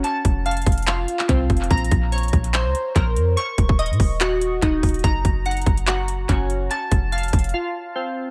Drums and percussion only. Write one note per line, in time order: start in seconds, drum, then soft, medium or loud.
0.04 closed hi-hat medium
0.25 kick medium
0.25 closed hi-hat medium
0.46 closed hi-hat medium
0.51 closed hi-hat medium
0.57 closed hi-hat medium
0.62 closed hi-hat medium
0.66 kick loud
0.66 closed hi-hat medium
0.72 closed hi-hat medium
0.78 closed hi-hat medium
0.82 closed hi-hat soft
0.87 clap loud
0.87 closed hi-hat medium
1.08 closed hi-hat medium
1.19 clap medium
1.29 kick loud
1.29 closed hi-hat medium
1.50 kick medium
1.50 closed hi-hat soft
1.57 closed hi-hat soft
1.64 closed hi-hat soft
1.71 kick loud
1.71 closed hi-hat medium
1.77 closed hi-hat medium
1.84 closed hi-hat medium
1.91 kick medium
1.91 closed hi-hat medium
2.12 closed hi-hat medium
2.18 closed hi-hat medium
2.23 closed hi-hat medium
2.28 closed hi-hat medium
2.33 kick medium
2.33 closed hi-hat medium
2.44 closed hi-hat medium
2.54 clap loud
2.54 closed hi-hat medium
2.75 closed hi-hat medium
2.96 kick loud
2.96 closed hi-hat medium
3.16 closed hi-hat medium
3.37 closed hi-hat medium
3.58 kick medium
3.58 closed hi-hat medium
3.69 kick loud
3.79 closed hi-hat medium
3.86 closed hi-hat medium
3.93 closed hi-hat soft
4.00 kick medium
4.00 open hi-hat medium
4.21 clap loud
4.21 closed hi-hat medium
4.42 closed hi-hat medium
4.62 kick loud
4.62 closed hi-hat medium
4.83 kick medium
4.83 closed hi-hat medium
4.83 open hi-hat soft
4.89 closed hi-hat medium
4.94 closed hi-hat soft
4.99 closed hi-hat soft
5.04 kick loud
5.04 closed hi-hat medium
5.25 kick medium
5.25 closed hi-hat medium
5.46 closed hi-hat medium
5.51 closed hi-hat medium
5.57 closed hi-hat medium
5.62 closed hi-hat medium
5.66 kick loud
5.66 closed hi-hat medium
5.77 closed hi-hat medium
5.87 clap loud
5.87 closed hi-hat medium
6.08 closed hi-hat medium
6.29 kick loud
6.29 closed hi-hat medium
6.50 closed hi-hat medium
6.71 closed hi-hat medium
6.92 kick medium
6.92 closed hi-hat medium
7.12 closed hi-hat medium
7.18 closed hi-hat medium
7.23 closed hi-hat medium
7.28 closed hi-hat medium
7.33 kick medium
7.33 closed hi-hat medium
7.39 closed hi-hat medium
7.44 closed hi-hat medium
7.49 closed hi-hat soft